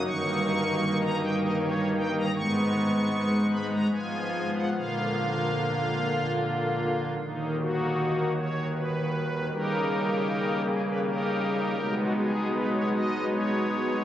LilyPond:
<<
  \new Staff \with { instrumentName = "Pipe organ" } { \time 3/4 \key aes \dorian \tempo 4 = 78 des'''4~ des'''16 bes''16 g''16 ees''16 des''8 g''16 bes''16 | des'''4. ces'''16 bes''16 aes''8. ges''16 | f''2 r4 | r8 <bes ees' ges'>4 des''8 ces''4 |
<ees' g' bes'>4. aes'16 ces''16 <ees' g' bes'>4~ | <ees' g' bes'>16 ges'16 aes'8 ces''16 des''16 ees''8 des''4 | }
  \new Staff \with { instrumentName = "Pipe organ" } { \clef bass \time 3/4 \key aes \dorian <g,, g, ees bes ees'>2. | <aes,, aes, aes ces' ees'>2 <aes,, aes, f ces' f'>4 | <bes,, bes, d bes f'>2. | <ees,, ees, ees bes ees'>2. |
<des g bes>2. | <ces, ces aes ces' ees'>2. | }
>>